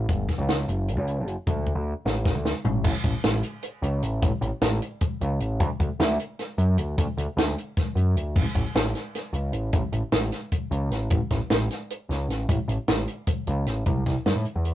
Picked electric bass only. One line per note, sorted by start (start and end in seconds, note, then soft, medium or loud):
0.09 0.26 G1 loud
0.38 0.64 C#2 medium
0.68 0.97 F#1 loud
0.97 1.26 C#2 medium
1.26 1.35 F#1 medium
1.47 1.72 D2 medium
1.75 1.93 D2 medium
2.05 2.31 A1 loud
2.35 2.52 D2 medium
2.65 2.82 A1 medium
2.84 2.93 A1 loud
3.04 3.13 A1 medium
3.24 3.41 A1 medium
3.82 4.03 C#2 medium
4.03 4.20 A1 medium
4.22 4.31 A1 loud
4.41 4.50 A1 medium
4.62 4.79 A1 loud
5.21 5.40 C#2 medium
5.40 5.60 A1 medium
5.60 5.69 D2 loud
5.80 5.88 D2 medium
6.00 6.16 D2 loud
6.58 6.78 F#2 medium
6.78 6.95 D2 medium
6.98 7.06 D2 loud
7.17 7.26 D2 medium
7.37 7.54 D2 loud
7.95 8.16 F#2 medium
8.16 8.37 D2 medium
8.36 8.44 A1 medium
8.55 8.64 A1 medium
8.75 8.92 A1 medium
9.33 9.53 C#2 medium
9.53 9.70 A1 medium
9.73 9.82 A1 loud
9.92 10.01 A1 medium
10.12 10.29 A1 loud
10.71 10.90 C#2 medium
10.90 11.08 A1 medium
11.10 11.19 A1 loud
11.31 11.39 A1 medium
11.51 11.67 A1 medium
12.09 12.28 C#2 medium
12.28 12.45 A1 medium
12.49 12.57 A1 loud
12.68 12.77 A1 medium
12.88 13.05 A1 loud
13.47 13.67 C#2 medium
13.67 13.84 A1 medium
13.86 14.03 C2 loud
14.06 14.15 C2 medium
14.26 14.34 G2 medium
14.36 14.44 A2 medium
14.56 14.74 E2 medium